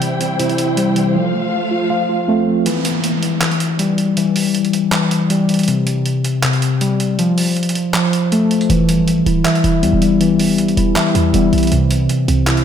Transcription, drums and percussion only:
0.02 closed hi-hat
0.21 closed hi-hat
0.40 closed hi-hat
0.49 closed hi-hat
0.58 closed hi-hat
0.77 closed hi-hat
0.96 closed hi-hat
2.66 closed hi-hat
2.85 closed hi-hat
3.04 closed hi-hat
3.23 closed hi-hat
3.41 clap, closed hi-hat
3.51 closed hi-hat
3.60 closed hi-hat
3.79 closed hi-hat
3.98 closed hi-hat
4.17 closed hi-hat
4.36 open hi-hat
4.55 closed hi-hat
4.65 closed hi-hat
4.73 closed hi-hat
4.92 clap, closed hi-hat
5.11 closed hi-hat
5.30 closed hi-hat
5.49 closed hi-hat
5.54 closed hi-hat
5.59 closed hi-hat
5.63 closed hi-hat
5.68 closed hi-hat
5.87 closed hi-hat
6.06 closed hi-hat
6.25 closed hi-hat
6.43 clap, closed hi-hat
6.53 closed hi-hat
6.62 closed hi-hat
6.81 closed hi-hat
7.00 closed hi-hat
7.19 closed hi-hat
7.38 open hi-hat
7.57 closed hi-hat
7.63 closed hi-hat
7.69 closed hi-hat
7.75 closed hi-hat
7.94 clap, closed hi-hat
8.13 closed hi-hat
8.32 closed hi-hat
8.51 closed hi-hat
8.61 closed hi-hat
8.70 closed hi-hat
8.89 closed hi-hat
9.08 closed hi-hat
9.26 closed hi-hat
9.45 clap, closed hi-hat
9.55 closed hi-hat
9.64 closed hi-hat
9.83 closed hi-hat
10.02 closed hi-hat
10.21 closed hi-hat
10.40 open hi-hat
10.58 closed hi-hat
10.68 closed hi-hat
10.77 closed hi-hat
10.96 clap, closed hi-hat
11.15 closed hi-hat
11.34 closed hi-hat
11.53 closed hi-hat
11.58 closed hi-hat
11.63 closed hi-hat
11.67 closed hi-hat
11.72 closed hi-hat
11.91 closed hi-hat
12.09 closed hi-hat
12.28 closed hi-hat
12.47 clap, closed hi-hat
12.57 closed hi-hat

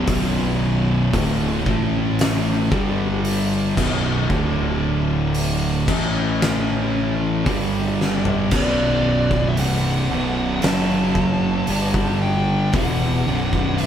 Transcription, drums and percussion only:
0.07 kick, open hi-hat
1.13 kick, open hi-hat
1.66 kick
2.19 snare, open hi-hat
2.72 kick
3.25 open hi-hat
3.77 kick, snare, crash
4.30 kick
5.34 open hi-hat
5.88 kick, crash
6.42 snare
7.46 kick, open hi-hat
8.01 snare
8.25 floor tom
8.51 kick, crash
9.31 kick
9.57 open hi-hat
10.62 snare, open hi-hat
11.15 kick
11.67 open hi-hat
11.94 kick
12.73 kick, open hi-hat
13.53 kick
13.78 open hi-hat

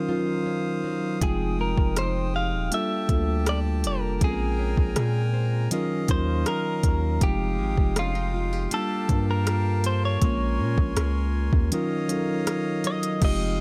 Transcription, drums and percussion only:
1.22 kick, closed hi-hat
1.78 kick
1.97 cross-stick, closed hi-hat
2.72 closed hi-hat
3.09 kick, closed hi-hat
3.46 cross-stick, closed hi-hat
3.84 closed hi-hat
4.21 kick, closed hi-hat
4.77 kick
4.96 cross-stick, closed hi-hat
5.71 closed hi-hat
6.08 kick, closed hi-hat
6.46 cross-stick, closed hi-hat
6.83 kick, closed hi-hat
7.21 kick, closed hi-hat
7.78 kick
7.96 cross-stick, closed hi-hat
8.71 closed hi-hat
9.09 kick, closed hi-hat
9.47 cross-stick, closed hi-hat
9.84 closed hi-hat
10.22 kick, closed hi-hat
10.78 kick
10.97 cross-stick, closed hi-hat
11.53 kick
11.72 closed hi-hat
12.09 closed hi-hat
12.47 cross-stick, closed hi-hat
12.84 closed hi-hat
13.03 closed hi-hat
13.22 kick, closed hi-hat, crash

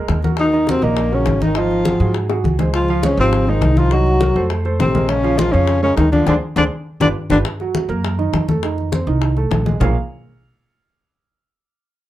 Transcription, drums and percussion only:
0.08 high bongo, low bongo, high conga
0.23 high bongo, high conga
0.37 high bongo, high conga
0.52 high bongo, high conga
0.67 high bongo, high conga
0.82 high bongo, high conga
0.97 high bongo, high conga
1.13 high conga
1.26 high bongo, low bongo, high conga
1.41 high bongo, high conga
1.55 high bongo, high conga
1.71 high conga
1.85 high bongo, high conga
2.00 high bongo, high conga
2.14 high bongo, high conga
2.30 high bongo, high conga
2.45 high conga
2.59 low bongo, high conga
2.74 high bongo, high conga
2.88 high bongo, high conga
3.03 high bongo, high conga
3.18 high bongo, high conga
3.32 high bongo, high conga
3.47 high conga
3.62 high bongo, low bongo, high conga
3.77 high bongo, high conga
3.91 high bongo, high conga
4.06 high conga
4.21 high bongo, high conga
4.36 high bongo, high conga
4.50 high bongo, high conga
4.65 high bongo, high conga
4.80 high bongo, low bongo, high conga
4.95 high bongo, high conga
5.09 high bongo, high conga
5.24 high bongo, high conga
5.38 high bongo, high conga
5.53 high bongo, high conga
5.67 high bongo, high conga
5.83 high conga
5.97 high bongo, low bongo, high conga
6.12 high bongo, high conga
6.27 low bongo, high conga
6.56 low bongo, high conga
7.01 low bongo, high conga
7.30 low bongo, high conga
7.45 high bongo, high conga
7.60 high bongo, high conga
7.75 high bongo, high conga
7.90 high bongo, high conga
8.04 high bongo, high conga
8.19 high conga
8.34 high bongo, low bongo, high conga
8.48 high bongo, high conga
8.63 high bongo, high conga
8.78 high conga
8.92 high bongo, high conga
9.07 high bongo, high conga
9.22 high bongo, high conga
9.37 high bongo, high conga
9.51 high bongo, low bongo, high conga
9.66 high bongo, high conga
9.81 low bongo, low conga

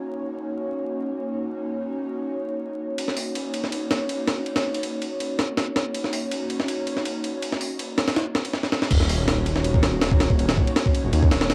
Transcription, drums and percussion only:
2.98 ride
3.08 snare
3.16 open hi-hat
3.35 ride
3.53 ride
3.63 snare
3.72 ride
3.91 snare, ride
4.09 ride
4.28 snare, ride
4.46 ride
4.56 snare, ride
4.75 ride
4.83 ride
5.02 ride
5.20 ride
5.39 snare, ride
5.57 snare, ride
5.76 snare, ride
5.95 ride
6.04 snare
6.13 open hi-hat
6.32 ride
6.50 ride
6.60 snare
6.68 ride
6.87 ride
6.97 snare
7.05 ride
7.24 ride
7.42 ride
7.52 snare
7.61 open hi-hat
7.79 ride
7.98 snare, ride
8.08 snare, ride
8.16 snare, ride
8.35 snare
8.45 ride
8.53 snare
8.63 snare
8.72 snare
8.82 snare
8.91 kick, crash, ride
9.00 snare
9.09 open hi-hat
9.28 snare, ride
9.46 ride
9.56 snare
9.64 ride
9.74 kick
9.83 snare, ride
10.02 snare, ride
10.11 kick
10.20 snare, ride
10.30 kick
10.39 ride
10.49 snare, ride
10.57 kick
10.67 ride
10.76 snare, ride
10.86 kick
10.94 ride
11.13 ride
11.23 kick
11.31 snare, ride
11.41 snare
11.50 snare, ride

